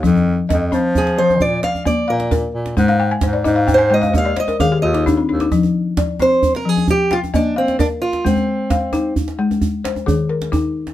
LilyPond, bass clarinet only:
\new Staff \with { instrumentName = "Bass clarinet" } { \clef bass \time 12/8 \key f \dorian \tempo 4. = 88 f,4 f,8 f4. bes,8 r4 bes,4 bes,8 | aes,4 aes,8 aes,4. ees,8 r4 ees,4 ees,8 | r1. | r1. | }